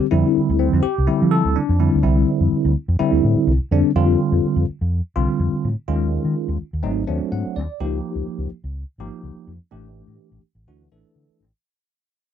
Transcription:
0.11 0.22 F2 loud
0.11 0.80 D3 medium
0.11 0.80 G3 medium
0.11 0.58 C4 medium
0.11 0.80 E4 medium
0.37 muted fingered electric bass stroke soft
0.49 0.68 D2 medium
0.59 0.85 C4 medium
0.73 0.82 F2 medium
0.83 1.33 G4 medium
0.83 muted fingered electric bass stroke soft
0.98 1.07 C2 medium
1.07 1.59 D3 medium
1.07 1.59 G3 medium
1.07 1.59 C4 medium
1.07 1.59 E4 medium
1.07 muted fingered electric bass stroke soft
1.22 1.41 F3 medium
1.31 1.57 A4 medium
1.45 1.54 D2 medium
1.56 2.06 D4 medium
1.56 muted fingered electric bass stroke soft
1.69 1.88 F2 medium
1.80 1.97 D3 medium
1.80 1.97 G3 medium
1.80 1.98 C4 medium
1.80 1.98 E4 medium
1.94 2.03 D2 medium
2.03 2.23 C2 medium
2.03 2.72 D3 medium
2.03 2.72 G3 medium
2.03 2.72 C4 medium
2.03 2.72 E4 medium
2.40 2.50 F2 medium
2.52 muted fingered electric bass stroke soft
2.65 2.74 D2 medium
2.88 2.98 F2 medium
2.99 3.51 D3 medium
2.99 3.51 G3 medium
2.99 3.51 C4 medium
2.99 3.51 E4 medium
2.99 muted fingered electric bass stroke soft
3.12 3.21 D2 medium
3.24 3.34 A2 medium
3.35 muted fingered electric bass stroke soft
3.47 3.57 C2 medium
3.61 muted fingered electric bass stroke soft
3.71 3.82 F2 medium
3.71 3.90 D3 medium
3.71 3.90 G3 medium
3.71 3.90 C4 medium
3.71 3.90 D4 medium
3.95 4.15 F2 medium
3.95 4.64 D3 medium
3.95 4.64 G3 medium
3.95 4.64 C4 medium
3.95 4.64 F4 medium
4.32 4.41 F2 medium
4.44 muted fingered electric bass stroke soft
4.56 4.65 F2 medium
4.69 muted fingered electric bass stroke soft
4.81 5.00 F2 medium
5.16 5.26 C2 medium
5.16 5.67 D3 medium
5.16 5.67 G3 medium
5.16 5.67 C4 medium
5.16 5.67 F4 medium
5.40 5.50 F2 medium
5.53 muted fingered electric bass stroke soft
5.64 5.74 A2 medium
5.88 6.17 D#2 medium
5.88 6.56 D#3 medium
5.88 6.56 G#3 medium
5.88 6.56 C#4 medium
5.88 6.56 F4 medium
6.25 6.34 D#3 medium
6.48 6.57 D#2 medium
6.62 muted fingered electric bass stroke soft
6.73 6.82 D#2 medium
6.83 7.03 G#1 medium
6.83 7.03 F#3 medium
6.83 7.03 A3 medium
6.83 7.03 C4 medium
6.83 7.03 D#4 medium
7.07 7.18 D#2 medium
7.07 7.59 F#3 medium
7.07 7.59 A3 medium
7.07 7.59 C4 medium
7.07 7.59 D4 medium
7.22 muted fingered electric bass stroke soft
7.32 7.42 G#2 medium
7.32 7.54 F#5 medium
7.46 muted fingered electric bass stroke soft
7.56 7.66 D#2 medium
7.56 7.78 D5 medium
7.80 7.99 C#2 medium
7.80 8.49 F3 medium
7.80 8.49 A#3 medium
7.80 8.48 D#4 medium
7.80 8.49 G4 medium
8.15 8.25 C#2 medium
8.27 muted fingered electric bass stroke soft
8.38 8.48 C#2 medium
8.51 muted fingered electric bass stroke soft
8.64 8.83 C#2 medium
8.98 9.09 G#1 medium
8.98 9.51 F3 medium
8.98 9.51 A#3 medium
8.98 9.51 D#4 medium
8.98 9.51 G4 medium
9.23 9.33 C#2 medium
9.35 muted fingered electric bass stroke soft
9.47 9.58 F2 medium
9.71 10.01 A1 medium
9.71 10.40 E3 medium
9.71 10.40 A3 medium
9.71 10.40 D4 medium
9.71 10.40 G4 medium
10.07 10.17 A2 medium
10.32 10.41 A1 medium
10.43 muted fingered electric bass stroke soft
10.55 10.65 A1 medium
10.67 10.86 D2 medium
10.67 10.87 E3 medium
10.67 10.87 A3 medium
10.67 10.88 D4 medium
10.67 10.87 F#4 medium
10.92 11.02 A1 medium
10.92 11.43 E3 medium
10.92 11.43 A3 medium
10.92 11.43 D4 medium
10.92 11.43 A4 medium
11.05 muted fingered electric bass stroke soft
11.16 11.26 D3 medium
11.29 muted fingered electric bass stroke soft
11.40 11.50 A1 medium

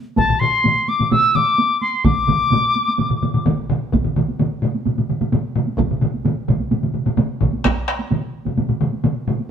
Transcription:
0.05 taiko high soft
0.16 0.41 A5 medium
0.16 taiko medium
0.16 taiko low-mid medium
0.16 taiko high medium
0.29 taiko low-mid medium
0.29 taiko high soft
0.40 0.90 C6 medium
0.40 taiko low-mid medium
0.52 taiko high soft
0.64 taiko low-mid medium
0.64 taiko high medium
0.77 taiko high soft
0.88 1.11 D6 medium
0.88 taiko high medium
0.99 taiko low-mid medium
0.99 taiko high medium
1.11 1.37 E6 loud
1.11 taiko low-mid loud
1.11 taiko high medium
1.23 taiko high soft
1.35 1.80 D6 medium
1.35 taiko low-mid medium
1.35 taiko high medium
1.58 taiko high medium
1.71 taiko high soft
1.81 2.06 C6 medium
1.81 taiko high medium
1.94 taiko high soft
2.04 3.45 D6 medium
2.04 taiko medium
2.04 taiko low-mid loud
2.04 taiko mid loud
2.04 taiko high medium
2.17 taiko high soft
2.27 taiko medium
2.27 taiko low-mid medium
2.27 taiko mid medium
2.27 taiko high medium
2.40 taiko high soft
2.50 taiko low-mid loud
2.50 taiko mid loud
2.50 taiko high medium
2.63 taiko high soft
2.76 taiko high medium
2.88 taiko high medium
2.98 taiko low-mid medium
2.98 taiko mid medium
2.98 taiko high medium
3.09 taiko low-mid medium
3.09 taiko mid medium
3.09 taiko high soft
3.22 taiko low-mid medium
3.22 taiko mid medium
3.22 taiko high medium
3.34 taiko low-mid medium
3.34 taiko mid medium
3.34 taiko high soft
3.45 taiko medium
3.45 taiko low-mid loud
3.45 taiko mid loud
3.45 taiko high medium
3.58 taiko high soft
3.70 taiko low-mid loud
3.70 taiko mid loud
3.70 taiko high soft
3.82 taiko high soft
3.92 taiko medium
3.92 taiko low-mid medium
3.92 taiko mid medium
3.92 taiko high medium
4.04 taiko low-mid medium
4.04 taiko mid medium
4.16 taiko low-mid medium
4.16 taiko mid medium
4.28 taiko high medium
4.39 taiko low-mid medium
4.39 taiko mid medium
4.39 taiko high medium
4.63 taiko low-mid medium
4.63 taiko mid medium
4.74 taiko high medium
4.86 taiko low-mid medium
4.86 taiko mid medium
4.86 taiko high medium
4.98 taiko low-mid medium
4.98 taiko mid medium
4.98 taiko high medium
5.09 taiko low-mid medium
5.09 taiko mid medium
5.21 taiko low-mid medium
5.21 taiko mid medium
5.21 taiko high medium
5.32 taiko low-mid medium
5.32 taiko mid medium
5.32 taiko high medium
5.56 taiko low-mid medium
5.56 taiko mid loud
5.67 taiko high medium
5.78 taiko loud
5.78 taiko low-mid medium
5.78 taiko mid medium
5.78 taiko high medium
5.91 taiko low-mid medium
5.91 taiko mid medium
6.02 taiko low-mid medium
6.02 taiko mid loud
6.14 taiko high medium
6.25 taiko low-mid medium
6.25 taiko mid medium
6.25 taiko high medium
6.48 taiko medium
6.48 taiko low-mid medium
6.48 taiko mid medium
6.60 taiko high medium
6.71 taiko low-mid medium
6.71 taiko mid medium
6.71 taiko high medium
6.83 taiko low-mid medium
6.83 taiko mid medium
6.83 taiko high soft
6.94 taiko low-mid medium
6.94 taiko mid medium
7.06 taiko low-mid medium
7.06 taiko mid medium
7.06 taiko high medium
7.17 taiko low-mid loud
7.17 taiko mid medium
7.17 taiko high medium
7.41 taiko medium
7.41 taiko low-mid loud
7.41 taiko mid medium
7.53 taiko high medium
7.64 taiko rim medium
7.64 taiko loud
7.64 taiko high medium
7.88 taiko rim medium
7.99 taiko high medium
8.11 taiko low-mid medium
8.11 taiko mid loud
8.11 taiko high medium
8.45 taiko low-mid medium
8.45 taiko mid medium
8.45 taiko high medium
8.57 taiko low-mid medium
8.57 taiko mid medium
8.57 taiko high medium
8.69 taiko low-mid medium
8.69 taiko mid medium
8.69 taiko high soft
8.81 taiko low-mid medium
8.81 taiko mid loud
8.93 taiko high soft
9.04 taiko low-mid loud
9.04 taiko mid medium
9.04 taiko high medium
9.28 taiko low-mid medium
9.28 taiko mid loud
9.39 taiko high medium

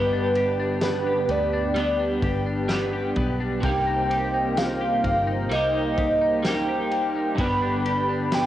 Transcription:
0.00 1.25 G1 loud
0.00 1.75 G2 medium
0.00 1.76 D3 medium
0.00 1.74 G3 medium
0.00 0.82 B3 medium
0.00 1.75 B3 medium
0.00 1.77 D4 medium
0.00 3.60 D4 medium
0.00 0.36 G4 medium
0.00 1.79 G4 medium
0.00 3.60 G4 medium
0.00 0.79 B4 loud
0.00 3.60 B4 medium
0.00 8.46 G5 medium
0.13 0.58 D4 medium
0.35 1.06 G4 medium
0.35 ride soft
0.59 1.52 D4 medium
0.81 1.29 B3 medium
0.81 1.32 B4 medium
0.81 snare loud
0.81 ride medium
0.81 tambourine medium
1.07 2.23 G4 medium
1.29 2.19 D2 medium
1.29 1.75 B3 medium
1.29 2.71 D5 loud
1.29 ride soft
1.53 1.98 D4 medium
1.74 2.68 G3 medium
1.74 2.69 B3 medium
1.74 2.68 B3 medium
1.74 2.71 D4 medium
1.74 ride medium
1.80 2.73 G4 medium
1.99 2.45 D4 medium
2.22 3.12 G1 loud
2.22 2.93 G4 medium
2.22 kick medium
2.22 ride soft
2.46 3.39 D4 medium
2.68 3.63 G3 medium
2.68 3.15 B3 medium
2.68 3.64 B3 medium
2.68 snare loud
2.68 ride medium
2.68 tambourine medium
2.72 3.65 D4 medium
2.72 3.69 G4 medium
2.93 4.10 G4 medium
3.16 3.61 B1 medium
3.16 3.63 B3 medium
3.16 kick medium
3.16 ride soft
3.40 3.73 D4 medium
3.61 5.00 C2 medium
3.61 5.50 C3 medium
3.61 5.49 G3 medium
3.61 4.56 A#3 medium
3.61 7.35 D#4 medium
3.61 7.35 A#4 medium
3.61 7.35 C5 medium
3.61 4.60 G5 loud
3.61 kick loud
3.61 ride medium
3.66 5.50 A#3 medium
3.66 5.52 D#4 medium
3.66 5.55 G4 medium
3.87 4.33 D#4 medium
4.11 4.80 G4 medium
4.11 ride soft
4.34 5.26 D#4 medium
4.57 5.03 A#3 medium
4.57 5.54 F5 loud
4.57 snare loud
4.57 ride medium
4.57 tambourine medium
4.81 5.98 G4 medium
5.04 5.51 G1 medium
5.04 5.49 A#3 medium
5.04 kick medium
5.04 ride soft
5.27 5.73 D#4 medium
5.49 7.34 C2 loud
5.49 6.42 G3 medium
5.49 6.44 A#3 medium
5.49 6.45 D#4 medium
5.49 6.47 D#5 loud
5.49 ride medium
5.55 6.48 G4 medium
5.74 6.20 D#4 medium
5.98 6.68 G4 medium
5.98 kick medium
5.98 ride soft
6.21 7.15 D#4 medium
6.43 7.39 G3 medium
6.43 7.39 A#3 medium
6.43 6.91 A#3 medium
6.43 7.42 G5 loud
6.43 snare loud
6.43 ride medium
6.43 tambourine medium
6.47 7.39 D#4 medium
6.47 7.43 G4 medium
6.69 7.85 G4 medium
6.91 7.39 A#3 medium
6.91 ride soft
7.16 7.48 D#4 medium
7.35 8.46 G1 loud
7.35 8.46 G2 medium
7.35 8.46 D3 medium
7.35 8.46 G3 medium
7.35 8.31 B3 medium
7.35 8.46 G4 medium
7.35 kick loud
7.35 ride medium
7.39 8.46 B3 medium
7.39 8.46 D4 medium
7.39 8.46 B4 medium
7.39 8.36 B5 loud
7.44 8.46 G4 medium
7.62 8.08 D4 medium
7.86 8.46 G4 medium
7.86 ride soft
8.09 8.46 D4 medium
8.32 8.46 B3 medium
8.32 8.46 G5 loud
8.32 snare loud
8.32 ride medium
8.32 tambourine medium

